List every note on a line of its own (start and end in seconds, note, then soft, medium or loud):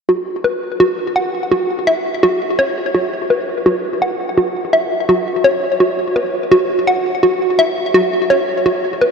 0.09 0.31 F#4 medium
0.44 0.66 B4 medium
0.80 1.02 F#4 medium
1.16 1.38 F#5 medium
1.51 1.73 F#4 medium
1.87 2.20 E5 medium
2.23 2.45 F#4 medium
2.59 2.91 C#5 medium
2.95 3.16 F#4 medium
3.30 3.52 B4 medium
3.66 3.88 F#4 medium
4.02 4.24 F#5 medium
4.38 4.59 F#4 medium
4.73 5.06 E5 medium
5.09 5.31 F#4 medium
5.44 5.77 C#5 medium
5.80 6.02 F#4 medium
6.16 6.38 B4 medium
6.52 6.73 F#4 medium
6.87 7.09 F#5 medium
7.23 7.45 F#4 medium
7.59 7.92 E5 medium
7.94 8.16 F#4 medium
8.30 8.63 C#5 medium
8.66 8.88 F#4 medium
9.01 9.11 B4 medium